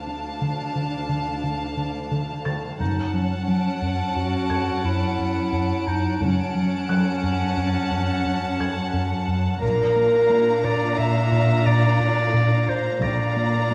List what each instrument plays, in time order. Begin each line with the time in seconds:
Already playing: cello section D2, clarinet D4, viola section D4, violin section F5 A5, felt piano G5 G6
0.07 analog synth bass D4
0.41 analog synth bass D3
0.76 analog synth bass D3
1.09 analog synth bass D3
1.44 analog synth bass D3
1.77 analog synth bass D3
2.11 analog synth bass D3
2.45 analog synth bass D3, felt piano A6
2.79 double bass section F#1, cello section F#2, analog synth bass F#2, viola section C#4, clarinet D#4, violin section C#5 F#5 A5
3.13 analog synth bass F#3, clarinet C#4
3.48 analog synth bass F#3, violin section D7
3.82 analog synth bass F#2
4.16 analog synth bass F#2, clarinet F#4
4.50 analog synth bass F#2, felt piano G#6
4.84 analog synth bass F#2, clarinet E4
5.19 analog synth bass F#2
5.52 analog synth bass F#2
5.87 analog synth bass F#2, clarinet D#4
6.21 double bass section F#1, analog synth bass F#2, cello section F#2, viola section C#4, clarinet C#4, violin section F#5 A5
6.55 analog synth bass F#3
6.89 analog synth bass F#3, felt piano F#6
7.23 analog synth bass F#2
7.57 analog synth bass F#2
7.80 violin section C#7
7.91 analog synth bass F#2
8.25 analog synth bass F#2
8.60 analog synth bass F#2, felt piano G#6
8.93 analog synth bass F#2
9.28 analog synth bass F#2
9.61 double bass section A#1, cello section A#2, analog synth bass A#2, viola section D4, clarinet A#4, violin section F5 A#5
9.96 analog synth bass A#3
10.30 analog synth bass A#3
10.64 analog synth bass A#2, clarinet D5
10.98 analog synth bass A#2, clarinet E5
11.32 analog synth bass A#2
11.66 analog synth bass A#2, clarinet D5
12.00 analog synth bass A#2
12.34 analog synth bass A#2
12.69 analog synth bass A#2, clarinet C5
13.02 double bass section A#1, analog synth bass A#2, cello section A#2, viola section D4, clarinet D5, violin section F5 A#5, felt piano A#6
13.37 analog synth bass A#3
13.71 analog synth bass A#3